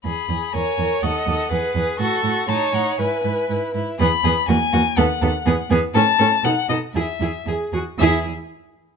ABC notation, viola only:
X:1
M:2/4
L:1/8
Q:1/4=122
K:E
V:1 name="Viola"
z2 c2 | d2 B2 | A2 c2 | B3 z |
B, B, ^A, A, | B, B, B, B, | C C D D | E E G F |
E z3 |]